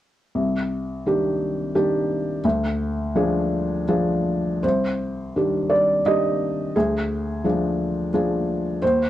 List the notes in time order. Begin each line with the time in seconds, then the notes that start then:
0.35 C2
1.06 D#3 D4 G4
1.75 D#3 D4 G4
2.45 D2
3.16 F3 D4 G#4
3.88 F3 D4 G#4
4.63 C2 C5
5.36 D#3 D4 G4
5.70 D5
6.06 D#3 D4 G4 D#5
6.76 D2 G#4
7.44 F3 D4 G#4
8.13 F3 D4 G#4
8.82 D#2 C5